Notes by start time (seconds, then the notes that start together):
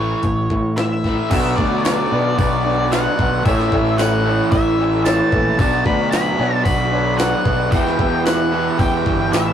Already playing: A1 A2 E3 A3 C#5
0.00 E4
0.23 A1 A2 E3, kick, open hi-hat
0.50 A2 E3, kick
0.77 A2 E3 E5, snare, open hi-hat
1.04 A2 E3 A3, kick, snare
1.30 B1 B2 F#3 B3 D4 F#4 B4 D5 E5, kick, open hi-hat, crash
1.56 D2 F#3 D4 F#4 B4 D5 E5, kick
1.84 F#3 D4 F#4 B4 D5, snare, open hi-hat, tambourine
2.12 B2 F#3 B3 D4 F#4 B4 D5
2.16 B2
2.38 B1 D4 F#4 B4 D5, kick, open hi-hat
2.65 D4 F#4 B4 D5
2.91 B2 F#3 B3 D4 F#4 B4 D5 F#5, snare, open hi-hat, tambourine
3.18 B1 B3 D4 F#4 B4 D5, kick
3.44 A1 A2 E3 A3 C#4 E4 A4 C#5 E5, kick, open hi-hat
3.60 snare
3.72 A1 E3 C#4 E4 A4 C#5, kick
3.98 E3 C#4 E4 A4 C#5 F#5, snare, open hi-hat, tambourine
4.24 A2 E3 A3 C#4 E4 A4 C#5
4.51 A1 C#4 E4 A4 C#5 E5, kick, open hi-hat
4.78 C#4 E4 A4 C#5
5.05 A2 E3 A3 C#4 E4 A4 C#5 A5, snare, open hi-hat, tambourine
5.32 A#1 A3 C#4 E4 A4 B4, kick
5.57 B1 B2 F#3 B3 D4 F#4 B4 D5 A5, kick, open hi-hat
5.85 D2 F#3 D4 F#4 B4 D5 B5, kick
6.11 F#3 D4 F#4 B4 B5, snare, open hi-hat, tambourine
6.37 B2 F#3 B3 D4 F#4 B4 C#5
6.42 B2
6.64 B1 D4 F#4 B4 D5 B5, kick, open hi-hat
6.91 D4 F#4 B4 C#5
7.17 B2 F#3 B3 D4 F#4 B4 D5 F#5, snare, open hi-hat, tambourine
7.44 B1 B3 D4 F#4 B4 D5, kick
7.70 E2 B2 E3 B3 E4 G4 B4 E5 G5, kick, open hi-hat
7.74 E3
7.87 snare
7.98 E2 B3 E4 G4 B4 E5, kick
8.25 E3 E4 G4 B4 E5 F#5, snare, open hi-hat, tambourine
8.51 E2 B2 E3 E4 G4 B4 E5
8.78 E2 E4 G4 B4 G5, kick, open hi-hat
9.06 G1 E4 G4 B4 E5, kick
9.31 A1 E2 B2 E3 E4 G4 B4 E5, snare, open hi-hat, tambourine